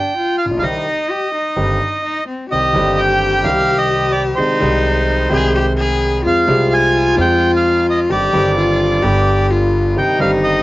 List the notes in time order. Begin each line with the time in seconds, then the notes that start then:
Already playing: D4 G5
0.17 F4
0.38 F5
0.45 A1
0.51 A#1
0.57 B1 F5
0.62 C2 C3 D#3 G3 C4 D#4 G4 D#5
1.11 G4
1.34 D#4
1.56 G1 G2 D#3 G3 C4 G4
2.04 D#4
2.27 C4
2.49 C2 C3 D#3 G3 C4 G4 D#5
2.53 C2
2.73 G1 G2 D#3 G3 C4
2.77 G4
2.98 G5
3.43 C2 C3 D#3 G3 C4 G4 F5
3.78 D#5
4.12 D5
4.36 C2 C3 D#3 G#3 C4 D#4 G#4 C5
4.40 C2
4.60 C2 C3 D#3 G#3 C4
4.64 G#4
5.29 C2 C3 D#3 G#3 C4 G#4
5.33 G#4
5.55 G4
5.78 G#4
6.25 F2 F3 G#3 C4 F4 G#4 F5
6.46 C2 C3 F3 G#3 C4
6.50 G#4
6.74 G#5
7.15 F2 F3 G#3 C4
7.19 G#4 G5
7.56 F5
7.90 D#5
8.09 G1 G2 D#3 G3 C4 G4 D5
8.31 G1 G2 D#3 G3 C4
8.36 G4
8.56 F4
9.02 G1 G2 D3 G3 B3 G4
9.51 F4
9.96 C2 C3 D#3 G3 C4 D#4 G4 G5
10.17 G1 G2 D#3 G3 C4 F5
10.22 G1 G4
10.43 D#5